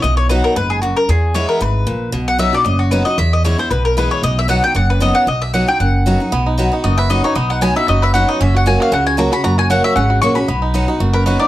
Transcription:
0.02 B1 B2 D#5
0.17 C#5
0.29 F#3 B3 D#4 F#4 B4
0.44 A#4
0.56 F#1 G#2 B4
0.70 G#4
0.82 F#2 F#4
0.97 A#4
1.09 E2 G#4
1.34 E3 G#3 B3 E4 C#5
1.49 A#4
1.61 G#1 G#2 B4
1.87 A#1 A#2
2.12 B1 B2
2.28 F#5
2.39 F#3 B3 D#4 F#4 E5
2.53 D#4 F#4 D5
2.65 F#1 F#2 D#5
2.79 F#4
2.91 F#3 B3 D#4 F#4 B4
3.05 D#4 F#4 D#5
3.18 E2 E5
3.33 D#5
3.44 E3 G#3 B3 E4 C#5
3.58 B3 E4 C5
3.70 B1 B2 B4
3.85 A#4
3.97 E3 G#3 B3 E4 B4
4.11 C#5
4.23 B1 B2 D#5
4.39 E5
4.48 F#3 B3 D#4 F#4 F#5
4.63 D#4 F#4 G5
4.75 F#1 F#2 F#5
4.90 B4
5.00 F#3 B3 D#4 F#4 D#5
5.15 F#5
5.27 B1 B2 D#5
5.42 E5
5.54 F#3 B3 D#4 F#4 F#5
5.68 D#4 F#4 G5
5.80 F#1 F#2 F#5
6.06 F#3 B3 D#4 F#4
6.20 D#4 F#4
6.32 B1 B2 B3
6.46 D#4
6.58 F#3 B3 D#4 F#4
6.72 D#4 F#4
6.84 F#1 F#2 F#4 D#5
6.98 B4 E5
7.09 F#3 B3 D#4 F#4 D#5
7.24 D#4 F#4 C#5
7.35 B1 B2 B3 D#5
7.50 D#4 F#5
7.61 F#3 B3 D#4 F#4 G#5
7.76 D#4 F#4 E5
7.88 F#1 F#2 F#4 D#5
8.02 B4 E5
8.14 F#3 B3 D#4 F#4 F#5
8.28 D#4 D#5
8.40 F#1 F#2 C#4 E5
8.55 F#4 F#5
8.66 F#3 A#3 C#4 F#4 G#5
8.80 F#4 F5
8.92 C#2 C#3 C#4 F#5
9.06 F#4 G#5
9.17 F#3 A#3 C#4 F#4 A#5
9.32 C#4 F#4 B5
9.44 F#1 F#2 F#4 A#5
9.58 F#4 G#5
9.70 F#3 A#3 C#4 F#4 F#5
9.84 F#4 E5
9.96 G#1 C#3 C#4 F#5
10.10 F#4
10.22 A#1 F#3 A#3 C#4 F#4 C#6
10.35 C#4 F#4 B5
10.48 B1 B2 B3
10.62 D#4
10.74 F#3 B3 D#4 F#4
10.88 D#4 F#4
11.00 F#1 F#2 F#4
11.13 A#4 B4
11.26 F#3 B3 D#4 F#4 B4
11.40 D#4 D5

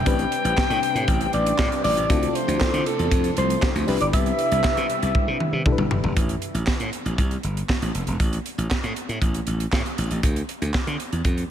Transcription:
Already playing: C3 G3 C4 D4 G5
0.06 A1 C4 D4 G4 B4, kick, closed hi-hat
0.19 closed hi-hat
0.32 closed hi-hat
0.45 A1, closed hi-hat
0.58 kick, snare, clap
0.70 A2, closed hi-hat
0.83 closed hi-hat
0.95 A2, closed hi-hat
1.08 A1, kick, closed hi-hat
1.21 closed hi-hat
1.33 A1 D5, closed hi-hat
1.47 closed hi-hat
1.59 A2, kick, snare, clap
1.72 closed hi-hat
1.84 A1 D5, open hi-hat
1.97 A1, closed hi-hat
2.09 D2 F3 A3 C4 E4 F4 A4, kick, closed hi-hat
2.23 closed hi-hat
2.35 C5, closed hi-hat
2.48 D2, closed hi-hat
2.61 kick, snare, clap
2.73 D3, closed hi-hat
2.86 A4, closed hi-hat
2.99 E2, closed hi-hat
3.11 F2, kick, closed hi-hat
3.24 closed hi-hat
3.37 C2 C5, closed hi-hat
3.50 closed hi-hat
3.62 kick, snare, clap
3.75 D2, closed hi-hat
3.87 C2 C3 G3 B3 D4 E4 G4 B4, open hi-hat
4.00 G1 D5, closed hi-hat
4.13 C2 E5, kick, closed hi-hat
4.26 closed hi-hat
4.39 closed hi-hat
4.52 C2, closed hi-hat
4.64 kick, snare, clap
4.77 C3, closed hi-hat
4.90 closed hi-hat
5.02 C2, closed hi-hat
5.15 kick, high tom
5.28 C3
5.40 mid tom
5.53 C3
5.66 D4 E4 G4 A4, kick, mid tom
5.72 B4
5.78 G1, mid tom
5.91 F1, floor tom
6.03 E1, floor tom
6.17 A1, kick, closed hi-hat
6.29 closed hi-hat
6.42 closed hi-hat
6.54 A1, closed hi-hat
6.67 kick, snare, clap
6.80 A2, closed hi-hat
6.93 closed hi-hat
7.05 A1, closed hi-hat
7.18 C2, kick, closed hi-hat
7.31 closed hi-hat
7.43 G1, closed hi-hat
7.57 closed hi-hat
7.69 kick, snare, clap
7.82 A1, closed hi-hat
7.95 F1, closed hi-hat
8.07 E1, closed hi-hat
8.20 A1, kick, closed hi-hat
8.33 closed hi-hat
8.46 closed hi-hat
8.58 A1, closed hi-hat
8.71 kick, snare, clap
8.83 A2, closed hi-hat
8.96 closed hi-hat
9.09 A2, closed hi-hat
9.22 A1, kick, closed hi-hat
9.34 closed hi-hat
9.47 A1, closed hi-hat
9.60 closed hi-hat
9.72 A2, kick, snare, clap
9.86 closed hi-hat
9.98 A1, closed hi-hat
10.11 A1, closed hi-hat
10.23 D2, kick, closed hi-hat
10.36 closed hi-hat
10.49 closed hi-hat
10.62 D2, closed hi-hat
10.74 kick, snare, clap
10.87 D3, closed hi-hat
11.00 closed hi-hat
11.12 E2, closed hi-hat
11.25 F2, kick, closed hi-hat
11.38 closed hi-hat

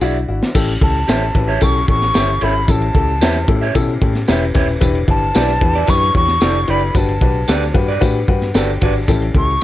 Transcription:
0.01 B1 D4 E4 F#4 G#4 D5 E5, tambourine
0.28 G#1 D4 E4 F#4
0.43 snare
0.54 A1 C#4 E4 G4 A4, kick, crash, tambourine
0.69 ride
0.81 C#2 C#4 E4 G4 A4 A5, kick, ride
1.08 A1 C#4 E4 G4 A4 C#5 E5, snare, ride, tambourine
1.35 A1 C#4 E4 G4 B4, kick, ride
1.48 G4 C#5 E5
1.61 B1 C#4 E4 G4 A4 C#6, kick, ride, tambourine
1.88 A1 C#4 E4 G4 A4 C#6, kick, ride
2.02 snare, ride
2.14 G1 C#4 E4 G4 A4 C#5 E5, snare, ride, tambourine
2.41 G#1 C#4 E4 G4 A4 C#5 E5 B5, ride
2.68 A1 C#4 E4 G4 A4 A5, kick, ride, tambourine
2.82 ride
2.95 C#2 C#4 E4 G4 A4, kick, ride
3.21 E2 C#4 E4 G4 B4 C#5 E5, snare, ride, tambourine
3.36 snare
3.48 A2 C#4 E4 G4 A4, kick, ride
3.61 G4 C#5 E5
3.74 B2 C#4 E4 G4 A4, kick, ride, tambourine
4.01 A2 C#4 E4 G4 A4, kick, ride
4.15 snare, ride
4.28 E1 C#4 E4 G4 B4 C#5 E5, snare, ride, tambourine
4.54 D#1 C#4 E4 G4 B4 C#5 E5, kick, open hi-hat, ride
4.81 E1 D4 E4 G4 B4, kick, hi-hat pedal, ride, tambourine
4.95 ride
5.07 G1 D4 E4 G4 B4 A5, kick, ride
5.35 B1 D4 E4 G4 B4 D5, snare, ride, tambourine
5.49 snare
5.61 E2 D4 E4 G4 B4, kick, ride
5.75 E4 G4 D5
5.87 F#2 D4 E4 G4 B4 C#6, kick, ride, tambourine
6.14 E2 D4 E4 G4 C#5 C#6, kick, ride
6.28 snare, ride
6.41 F1 D4 E4 G4 A4 D5, snare, ride, tambourine
6.68 F#1 D4 E4 G4 B4 D5 B5, ride
6.95 G1 D4 F#4 G4 B4 A5, kick, ride, tambourine
7.09 ride
7.21 B1 D4 F#4 G4 B4, kick, ride
7.48 D2 D4 F#4 G4 A4 B4 D5, snare, ride, tambourine
7.62 snare
7.74 G2 D4 F#4 G4 B4, kick, ride
7.88 F#4 B4 D5
8.01 A2 D4 F#4 G4 B4, kick, ride, tambourine
8.28 G2 D4 F#4 G4 B4 F#5, kick, ride
8.42 snare, ride
8.54 G1 D4 F#4 G4 A4 B4 D5 G5, snare, ride, tambourine
8.81 G#1 D4 F#4 G4 B4 D5 A5, kick, open hi-hat, ride
9.08 A1 C#4 E4 G4 A4, kick, hi-hat pedal, ride, tambourine
9.22 ride
9.35 C#2 C#4 E4 G4 A4 C#6, kick, ride

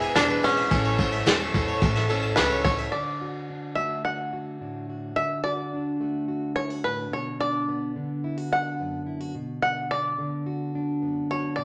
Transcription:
Already playing: B3 E4 G#4 B4 E5 G#5 E6
0.02 G#5
0.15 E1 E3 G#3 B3 D4 E4 G#4, snare, ride, tambourine
0.30 B4
0.43 C#4 G#4, ride
0.57 E5
0.70 A1 A2 E3 A3 C#4 E4 A4 C#5 E5 A5, kick, ride
0.85 C#5
0.97 A3 C#4 E4 A4, kick, ride
1.12 E5
1.25 E2 A2 E3 A3 C#4 E4 A4, snare, ride, tambourine
1.40 A5
1.54 E2 A3 C#4 E4 A4, kick, ride
1.68 C#5
1.80 A1 A3 C#4 E4 A4, kick, ride
1.96 E5, snare
2.09 A3 C#4 E4 A4, ride
2.23 A5
2.36 C#2 A2 E3 A3 C#4 E4 A4 B4, snare, ride, tambourine
2.50 C#5
2.64 A4 C#5, kick, ride
2.79 E5
2.92 D3 D5
3.21 F#4
3.50 D4
3.75 A3 F#4 E5
4.05 F#4 F#5
4.33 F#4
4.61 A2 D4
4.89 F#4
5.16 D3 E5
5.44 F#4 D5
5.73 D4
6.00 A3 F#4
6.28 F#4
6.56 E4 C#5
6.70 F#4
6.84 A2 D4 B4
7.11 B2 C#5
7.40 D4 D5
7.68 B3
7.96 D3 D4
8.24 E4
8.38 F#4
8.52 D4 F#5
8.80 F#2 B3
9.06 E4
9.21 F#4
9.35 B2
9.62 D4 F#5
9.91 B3 D5
10.18 D3 D4
10.46 F#4
10.75 D4
11.02 F#2 B3
11.31 F#4 C#5
11.56 B2 D5

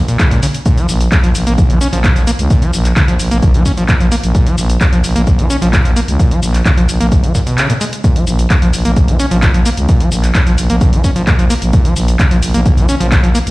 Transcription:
0.08 A#2, closed hi-hat, shaker
0.20 C#2 C#3, kick, clap, closed hi-hat, shaker
0.31 A#2, closed hi-hat, shaker
0.43 C#3, open hi-hat, shaker
0.54 closed hi-hat, shaker
0.66 A#2, kick, closed hi-hat, shaker
0.78 F3, closed hi-hat, shaker
0.89 A#1, open hi-hat, shaker
1.01 closed hi-hat, shaker
1.12 C#3, kick, clap, closed hi-hat, shaker
1.24 A#1 F3, closed hi-hat, shaker
1.35 A#1, open hi-hat, shaker
1.47 A#1 A#3, closed hi-hat, shaker
1.58 A#1, kick, closed hi-hat, shaker
1.70 A#1 F3, closed hi-hat, shaker
1.81 C#4, open hi-hat, shaker
1.93 A#1 F3, closed hi-hat, shaker
2.04 A#2, kick, clap, closed hi-hat, shaker
2.16 A#1 F3, closed hi-hat, shaker
2.27 A#3, open hi-hat, shaker
2.39 C#2, closed hi-hat, shaker
2.50 A#2, kick, closed hi-hat, shaker
2.62 F3, closed hi-hat, shaker
2.73 A#1, open hi-hat, shaker
2.85 clap, closed hi-hat, shaker
2.96 C#3, kick, clap, closed hi-hat, shaker
3.08 A#1 F3, closed hi-hat, shaker
3.19 A#1, open hi-hat, shaker
3.31 A#1 A#3, closed hi-hat, shaker
3.43 A#1, kick, closed hi-hat, shaker
3.54 A#1 F3, closed hi-hat, shaker
3.66 C#4, kick, open hi-hat, shaker
3.77 A#1 F3, closed hi-hat, shaker
3.89 A#2, kick, clap, closed hi-hat, shaker
4.00 A#1 F3, closed hi-hat, shaker
4.12 A#3, open hi-hat, shaker
4.23 A#1, closed hi-hat, shaker
4.35 A#2, kick, closed hi-hat, shaker
4.47 F3, closed hi-hat, shaker
4.58 A#1, open hi-hat, shaker
4.70 closed hi-hat, shaker
4.81 C#3, kick, clap, closed hi-hat, shaker
4.93 A#1 F3, closed hi-hat, shaker
5.04 A#1, open hi-hat, shaker
5.16 A#1 A#3, closed hi-hat, shaker
5.27 A#1, kick, closed hi-hat, shaker
5.39 A#1 F3, closed hi-hat, shaker
5.50 C#4, open hi-hat, shaker
5.62 A#1 F3, closed hi-hat, shaker
5.73 A#2, kick, clap, closed hi-hat, shaker
5.85 A#1 F3, closed hi-hat, shaker
5.96 A#3, open hi-hat, shaker
6.08 C#2, closed hi-hat, shaker
6.19 A#2, kick, closed hi-hat, shaker
6.31 F3, closed hi-hat, shaker
6.42 A#1, open hi-hat, shaker
6.54 clap, closed hi-hat, shaker
6.65 C#3, kick, clap, closed hi-hat, shaker
6.77 A#1 F3, closed hi-hat, shaker
6.89 A#1, open hi-hat, shaker
7.00 A#1 A#3, closed hi-hat, shaker
7.12 A#1, kick, closed hi-hat, shaker
7.23 F3, closed hi-hat, shaker
7.35 A#2, kick, open hi-hat, shaker
7.46 B2, closed hi-hat, shaker
7.58 C#3, clap, closed hi-hat, shaker
7.70 A#2, closed hi-hat, shaker
7.81 G#3, open hi-hat, shaker
7.93 closed hi-hat, shaker
8.04 A#2, kick, closed hi-hat, shaker
8.16 F3, closed hi-hat, shaker
8.27 A#1, open hi-hat, shaker
8.39 closed hi-hat, shaker
8.50 C#3, kick, clap, closed hi-hat, shaker
8.62 A#1 F3, closed hi-hat, shaker
8.73 A#1, open hi-hat, shaker
8.85 A#1 A#3, closed hi-hat, shaker
8.96 A#1, kick, closed hi-hat, shaker
9.08 A#1 F3, closed hi-hat, shaker
9.20 C#4, open hi-hat, shaker
9.31 A#1 F3, closed hi-hat, shaker
9.43 A#2, kick, clap, closed hi-hat, shaker
9.54 A#1 F3, closed hi-hat, shaker
9.66 A#3, open hi-hat, shaker
9.77 C#2, closed hi-hat, shaker
9.89 A#2, kick, closed hi-hat, shaker
10.00 F3, closed hi-hat, shaker
10.12 A#1, open hi-hat, shaker
10.24 clap, closed hi-hat, shaker
10.35 C#3, kick, clap, closed hi-hat, shaker
10.47 A#1 F3, closed hi-hat, shaker
10.58 A#1, open hi-hat, shaker
10.70 A#1 A#3, closed hi-hat, shaker
10.81 A#1, kick, closed hi-hat, shaker
10.93 A#1 F3, closed hi-hat, shaker
11.04 C#4, kick, open hi-hat, shaker
11.16 A#1 F3, closed hi-hat, shaker
11.27 A#2, kick, clap, closed hi-hat, shaker
11.39 A#1 F3, closed hi-hat, shaker
11.50 A#3, open hi-hat, shaker
11.62 A#1, closed hi-hat, shaker
11.73 A#2, kick, closed hi-hat, shaker
11.85 F3, closed hi-hat, shaker
11.96 A#1, open hi-hat, shaker
12.08 closed hi-hat, shaker
12.19 C#3, kick, clap, closed hi-hat, shaker
12.31 A#1 F3, closed hi-hat, shaker
12.43 A#1, open hi-hat, shaker
12.54 A#1 A#3, closed hi-hat, shaker
12.66 A#1, kick, closed hi-hat, shaker
12.77 A#1 F3, closed hi-hat, shaker
12.89 C#4, open hi-hat, shaker
13.00 A#1 F3, closed hi-hat, shaker
13.12 A#2, kick, clap, closed hi-hat, shaker
13.23 A#1 F3, closed hi-hat, shaker
13.35 A#3, open hi-hat, shaker
13.47 C#2, closed hi-hat, shaker

